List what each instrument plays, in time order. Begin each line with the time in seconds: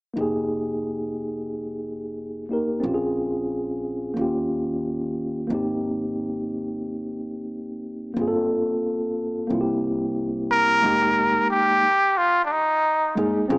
0.14 upright bass F1, tine electric piano A#3 D#4
0.18 tine electric piano G4 G#4
2.49 tine electric piano A#3 D#4 G4 A#4
2.80 upright bass A#1, tine electric piano C4 C#4
2.85 tine electric piano F4 G4
2.94 tine electric piano G#4
4.14 upright bass D#2, tine electric piano A#3 C#4
4.19 tine electric piano F4 G4
5.47 upright bass G#1, tine electric piano A#3 C4
5.52 tine electric piano D#4 G4
8.14 upright bass G1, tine electric piano A#3 C4
8.19 tine electric piano F4 G#4
8.28 tine electric piano A4
9.47 upright bass C2, tine electric piano A#3 C4
9.52 tine electric piano E4 F4
9.61 tine electric piano G4
10.51 muted trumpet A#4
10.82 upright bass F1, tine electric piano G#3 A#3 D#4 G4
11.51 muted trumpet G4
12.17 muted trumpet F4
12.45 muted trumpet D4
12.52 muted trumpet D#4
13.15 upright bass G1, tine electric piano G#3 A#3 D#4 G#4
13.48 upright bass A#1, tine electric piano C4 C#4 F4 G#4